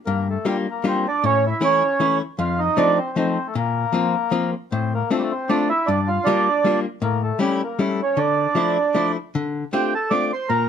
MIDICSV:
0, 0, Header, 1, 3, 480
1, 0, Start_track
1, 0, Key_signature, -1, "minor"
1, 0, Tempo, 388350
1, 67, Time_signature, 3, 2, 24, 8
1, 6786, Tempo, 383142
1, 13299, End_track
2, 0, Start_track
2, 0, Title_t, "Accordion"
2, 0, Program_c, 0, 21
2, 76, Note_on_c, 0, 58, 98
2, 343, Note_off_c, 0, 58, 0
2, 370, Note_on_c, 0, 57, 68
2, 577, Note_off_c, 0, 57, 0
2, 592, Note_on_c, 0, 55, 83
2, 701, Note_off_c, 0, 55, 0
2, 874, Note_on_c, 0, 58, 77
2, 1068, Note_off_c, 0, 58, 0
2, 1084, Note_on_c, 0, 60, 90
2, 1324, Note_off_c, 0, 60, 0
2, 1334, Note_on_c, 0, 62, 85
2, 1536, Note_off_c, 0, 62, 0
2, 1545, Note_on_c, 0, 61, 107
2, 1794, Note_off_c, 0, 61, 0
2, 1818, Note_on_c, 0, 64, 83
2, 2017, Note_off_c, 0, 64, 0
2, 2033, Note_on_c, 0, 61, 93
2, 2696, Note_off_c, 0, 61, 0
2, 2953, Note_on_c, 0, 65, 87
2, 3202, Note_on_c, 0, 63, 83
2, 3214, Note_off_c, 0, 65, 0
2, 3425, Note_off_c, 0, 63, 0
2, 3428, Note_on_c, 0, 62, 108
2, 3682, Note_on_c, 0, 60, 87
2, 3690, Note_off_c, 0, 62, 0
2, 3903, Note_off_c, 0, 60, 0
2, 3930, Note_on_c, 0, 60, 91
2, 4287, Note_on_c, 0, 57, 72
2, 4292, Note_off_c, 0, 60, 0
2, 4378, Note_off_c, 0, 57, 0
2, 4410, Note_on_c, 0, 58, 87
2, 5570, Note_off_c, 0, 58, 0
2, 5833, Note_on_c, 0, 60, 83
2, 6100, Note_off_c, 0, 60, 0
2, 6111, Note_on_c, 0, 58, 78
2, 6305, Note_off_c, 0, 58, 0
2, 6317, Note_on_c, 0, 57, 91
2, 6379, Note_off_c, 0, 57, 0
2, 6406, Note_on_c, 0, 55, 76
2, 6455, Note_off_c, 0, 55, 0
2, 6459, Note_on_c, 0, 57, 80
2, 6567, Note_on_c, 0, 60, 76
2, 6583, Note_off_c, 0, 57, 0
2, 6790, Note_on_c, 0, 62, 101
2, 6793, Note_off_c, 0, 60, 0
2, 7033, Note_off_c, 0, 62, 0
2, 7041, Note_on_c, 0, 64, 87
2, 7255, Note_on_c, 0, 62, 91
2, 7272, Note_off_c, 0, 64, 0
2, 7523, Note_on_c, 0, 65, 82
2, 7532, Note_off_c, 0, 62, 0
2, 7729, Note_on_c, 0, 62, 99
2, 7753, Note_off_c, 0, 65, 0
2, 8427, Note_off_c, 0, 62, 0
2, 8708, Note_on_c, 0, 58, 87
2, 8950, Note_off_c, 0, 58, 0
2, 8970, Note_on_c, 0, 57, 75
2, 9173, Note_off_c, 0, 57, 0
2, 9181, Note_on_c, 0, 55, 88
2, 9453, Note_off_c, 0, 55, 0
2, 9477, Note_on_c, 0, 58, 74
2, 9668, Note_off_c, 0, 58, 0
2, 9668, Note_on_c, 0, 57, 72
2, 9937, Note_off_c, 0, 57, 0
2, 9962, Note_on_c, 0, 61, 76
2, 10152, Note_on_c, 0, 62, 86
2, 10170, Note_off_c, 0, 61, 0
2, 11331, Note_off_c, 0, 62, 0
2, 12102, Note_on_c, 0, 67, 91
2, 12358, Note_off_c, 0, 67, 0
2, 12373, Note_on_c, 0, 69, 79
2, 12569, Note_on_c, 0, 74, 98
2, 12580, Note_off_c, 0, 69, 0
2, 12829, Note_off_c, 0, 74, 0
2, 12850, Note_on_c, 0, 72, 88
2, 13052, Note_on_c, 0, 70, 89
2, 13055, Note_off_c, 0, 72, 0
2, 13299, Note_off_c, 0, 70, 0
2, 13299, End_track
3, 0, Start_track
3, 0, Title_t, "Hollow-body jazz guitar"
3, 0, Program_c, 1, 26
3, 88, Note_on_c, 1, 43, 65
3, 447, Note_off_c, 1, 43, 0
3, 557, Note_on_c, 1, 55, 59
3, 561, Note_on_c, 1, 58, 52
3, 567, Note_on_c, 1, 62, 51
3, 569, Note_on_c, 1, 65, 64
3, 817, Note_off_c, 1, 58, 0
3, 818, Note_off_c, 1, 55, 0
3, 819, Note_off_c, 1, 65, 0
3, 821, Note_off_c, 1, 62, 0
3, 1037, Note_on_c, 1, 55, 53
3, 1043, Note_on_c, 1, 58, 51
3, 1049, Note_on_c, 1, 62, 47
3, 1050, Note_on_c, 1, 65, 54
3, 1295, Note_off_c, 1, 55, 0
3, 1297, Note_off_c, 1, 62, 0
3, 1298, Note_off_c, 1, 65, 0
3, 1299, Note_off_c, 1, 58, 0
3, 1529, Note_on_c, 1, 45, 69
3, 1883, Note_off_c, 1, 45, 0
3, 1987, Note_on_c, 1, 52, 65
3, 1993, Note_on_c, 1, 57, 44
3, 1999, Note_on_c, 1, 64, 65
3, 2000, Note_on_c, 1, 61, 46
3, 2248, Note_off_c, 1, 57, 0
3, 2249, Note_off_c, 1, 52, 0
3, 2249, Note_off_c, 1, 61, 0
3, 2253, Note_off_c, 1, 64, 0
3, 2471, Note_on_c, 1, 52, 57
3, 2477, Note_on_c, 1, 57, 45
3, 2481, Note_on_c, 1, 64, 53
3, 2484, Note_on_c, 1, 61, 41
3, 2727, Note_off_c, 1, 52, 0
3, 2727, Note_off_c, 1, 61, 0
3, 2728, Note_off_c, 1, 57, 0
3, 2731, Note_off_c, 1, 64, 0
3, 2949, Note_on_c, 1, 41, 70
3, 3308, Note_off_c, 1, 41, 0
3, 3422, Note_on_c, 1, 57, 58
3, 3431, Note_on_c, 1, 60, 57
3, 3434, Note_on_c, 1, 53, 68
3, 3442, Note_on_c, 1, 63, 64
3, 3682, Note_off_c, 1, 57, 0
3, 3682, Note_off_c, 1, 60, 0
3, 3684, Note_off_c, 1, 63, 0
3, 3685, Note_off_c, 1, 53, 0
3, 3908, Note_on_c, 1, 53, 53
3, 3914, Note_on_c, 1, 57, 49
3, 3918, Note_on_c, 1, 60, 52
3, 3921, Note_on_c, 1, 63, 50
3, 4162, Note_off_c, 1, 53, 0
3, 4162, Note_off_c, 1, 57, 0
3, 4163, Note_off_c, 1, 63, 0
3, 4166, Note_off_c, 1, 60, 0
3, 4392, Note_on_c, 1, 46, 68
3, 4750, Note_off_c, 1, 46, 0
3, 4851, Note_on_c, 1, 53, 52
3, 4863, Note_on_c, 1, 58, 51
3, 4869, Note_on_c, 1, 60, 51
3, 4874, Note_on_c, 1, 65, 59
3, 5118, Note_off_c, 1, 53, 0
3, 5120, Note_off_c, 1, 58, 0
3, 5120, Note_off_c, 1, 60, 0
3, 5120, Note_off_c, 1, 65, 0
3, 5332, Note_on_c, 1, 53, 54
3, 5338, Note_on_c, 1, 58, 58
3, 5341, Note_on_c, 1, 60, 44
3, 5343, Note_on_c, 1, 65, 53
3, 5599, Note_off_c, 1, 53, 0
3, 5600, Note_off_c, 1, 60, 0
3, 5602, Note_off_c, 1, 58, 0
3, 5602, Note_off_c, 1, 65, 0
3, 5837, Note_on_c, 1, 45, 59
3, 6199, Note_off_c, 1, 45, 0
3, 6310, Note_on_c, 1, 57, 52
3, 6316, Note_on_c, 1, 60, 54
3, 6318, Note_on_c, 1, 62, 56
3, 6323, Note_on_c, 1, 65, 50
3, 6571, Note_off_c, 1, 57, 0
3, 6572, Note_off_c, 1, 60, 0
3, 6572, Note_off_c, 1, 65, 0
3, 6574, Note_off_c, 1, 62, 0
3, 6791, Note_on_c, 1, 60, 46
3, 6796, Note_on_c, 1, 57, 58
3, 6801, Note_on_c, 1, 62, 52
3, 6807, Note_on_c, 1, 65, 54
3, 7052, Note_off_c, 1, 60, 0
3, 7055, Note_off_c, 1, 62, 0
3, 7056, Note_off_c, 1, 57, 0
3, 7056, Note_off_c, 1, 65, 0
3, 7278, Note_on_c, 1, 43, 63
3, 7640, Note_off_c, 1, 43, 0
3, 7756, Note_on_c, 1, 55, 68
3, 7766, Note_on_c, 1, 58, 65
3, 7767, Note_on_c, 1, 62, 56
3, 7773, Note_on_c, 1, 65, 68
3, 8015, Note_off_c, 1, 55, 0
3, 8016, Note_off_c, 1, 62, 0
3, 8018, Note_off_c, 1, 58, 0
3, 8020, Note_off_c, 1, 65, 0
3, 8231, Note_on_c, 1, 55, 53
3, 8240, Note_on_c, 1, 58, 47
3, 8246, Note_on_c, 1, 62, 44
3, 8257, Note_on_c, 1, 65, 52
3, 8492, Note_off_c, 1, 55, 0
3, 8493, Note_off_c, 1, 58, 0
3, 8493, Note_off_c, 1, 62, 0
3, 8494, Note_off_c, 1, 65, 0
3, 8698, Note_on_c, 1, 45, 67
3, 9067, Note_off_c, 1, 45, 0
3, 9164, Note_on_c, 1, 55, 66
3, 9173, Note_on_c, 1, 57, 50
3, 9179, Note_on_c, 1, 61, 50
3, 9183, Note_on_c, 1, 64, 66
3, 9438, Note_off_c, 1, 64, 0
3, 9440, Note_off_c, 1, 55, 0
3, 9440, Note_off_c, 1, 57, 0
3, 9440, Note_off_c, 1, 61, 0
3, 9666, Note_on_c, 1, 55, 54
3, 9668, Note_on_c, 1, 57, 47
3, 9673, Note_on_c, 1, 61, 38
3, 9680, Note_on_c, 1, 64, 53
3, 9928, Note_off_c, 1, 57, 0
3, 9928, Note_off_c, 1, 61, 0
3, 9928, Note_off_c, 1, 64, 0
3, 9930, Note_off_c, 1, 55, 0
3, 10141, Note_on_c, 1, 50, 60
3, 10507, Note_off_c, 1, 50, 0
3, 10619, Note_on_c, 1, 53, 63
3, 10631, Note_on_c, 1, 57, 56
3, 10638, Note_on_c, 1, 62, 55
3, 10647, Note_on_c, 1, 64, 58
3, 10889, Note_off_c, 1, 53, 0
3, 10889, Note_off_c, 1, 62, 0
3, 10889, Note_off_c, 1, 64, 0
3, 10890, Note_off_c, 1, 57, 0
3, 11114, Note_on_c, 1, 57, 53
3, 11122, Note_on_c, 1, 62, 45
3, 11126, Note_on_c, 1, 53, 52
3, 11132, Note_on_c, 1, 64, 61
3, 11380, Note_off_c, 1, 57, 0
3, 11384, Note_off_c, 1, 62, 0
3, 11386, Note_off_c, 1, 64, 0
3, 11387, Note_off_c, 1, 53, 0
3, 11621, Note_on_c, 1, 50, 70
3, 11976, Note_off_c, 1, 50, 0
3, 12096, Note_on_c, 1, 57, 57
3, 12100, Note_on_c, 1, 62, 46
3, 12101, Note_on_c, 1, 60, 61
3, 12108, Note_on_c, 1, 65, 55
3, 12346, Note_off_c, 1, 62, 0
3, 12348, Note_off_c, 1, 57, 0
3, 12351, Note_off_c, 1, 60, 0
3, 12352, Note_off_c, 1, 65, 0
3, 12574, Note_on_c, 1, 57, 53
3, 12580, Note_on_c, 1, 60, 48
3, 12593, Note_on_c, 1, 62, 41
3, 12602, Note_on_c, 1, 65, 50
3, 12827, Note_off_c, 1, 60, 0
3, 12828, Note_off_c, 1, 57, 0
3, 12828, Note_off_c, 1, 62, 0
3, 12828, Note_off_c, 1, 65, 0
3, 13058, Note_on_c, 1, 46, 58
3, 13299, Note_off_c, 1, 46, 0
3, 13299, End_track
0, 0, End_of_file